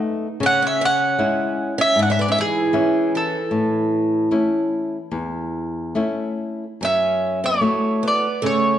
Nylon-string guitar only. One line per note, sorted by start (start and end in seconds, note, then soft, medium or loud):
0.00 0.26 A3 medium
0.00 0.26 B3 medium
0.00 0.27 D#4 medium
0.40 1.16 C#3 medium
1.18 1.81 G#3 medium
1.18 1.81 C#4 soft
1.18 1.81 E4 medium
1.96 2.71 G#2 medium
2.73 3.35 E3 medium
2.73 3.35 C#4 medium
2.73 3.36 E4 medium
3.51 4.28 A2 medium
4.31 4.96 A3 soft
4.31 4.96 C#4 soft
4.31 4.96 E4 medium
5.12 5.93 E2 medium
5.95 6.63 A3 soft
5.95 6.63 C#4 soft
5.95 6.64 E4 soft
6.81 7.60 F#2 medium
7.61 8.25 A3 soft
7.61 8.26 E4 soft
7.61 8.26 F#4 medium
8.43 8.79 C#3 medium